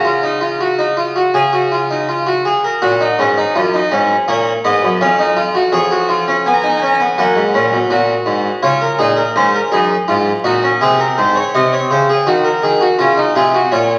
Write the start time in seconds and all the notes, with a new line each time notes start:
Already playing: C#3 A#5
0.05 F4
0.23 D#4
0.41 F4
0.61 F#4
0.79 D#4
0.97 F4
1.16 F#4
1.34 C#3 G#4 G#5
1.53 F#4
1.72 F4
1.91 D#4
2.09 F4
2.27 F#4
2.45 G#4
2.64 A#4
2.82 A#2 F#4 F#5
3.01 D#4
3.19 G#2 C#4
3.37 D#4
3.56 F#2 F4
3.74 D#4
3.92 G#2 C#4
4.28 A#2 A#3 C#5
4.65 G#2 B3 D#5
4.82 F#2
5.01 F2 C#4 F5
5.19 D#4
5.37 F4
5.55 F#4
5.72 F2 G#4 C#5
5.91 F#4
6.09 F4
6.28 C#4
6.46 B3 G#5
6.54 A#5
6.62 D#4 G#5
6.70 A#5
6.77 G#5
6.82 C#4 A#5
6.94 G#5
7.00 B3
7.18 F#2 A#3 F#5
7.36 G#2
7.54 A#2 C#4
7.73 B2
7.90 A#2 F#4
8.26 G#2
8.63 C#3 F4 C#5
8.81 A#4
8.99 A#2 D#4 G#4
9.17 A#4
9.36 G#2 C#4 C5
9.54 A#4
9.72 F#2 D#4 G#4
10.08 G#2 F4
10.44 A#2 D#4 F#4
10.63 C#4
10.81 C3 C4 G#4
11.00 A#4
11.18 G#2 C5
11.36 C#5
11.55 C3 C4 D#5
11.73 C#5
11.91 C#3 C5
12.09 G#4
12.27 D#3 F#4
12.44 A#4
12.63 D#3 G#4
12.81 F#4
12.99 C#3 C#4 F4
13.17 D#4
13.36 C3 F4 G#4
13.54 F#4
13.72 A#2 F4 C#5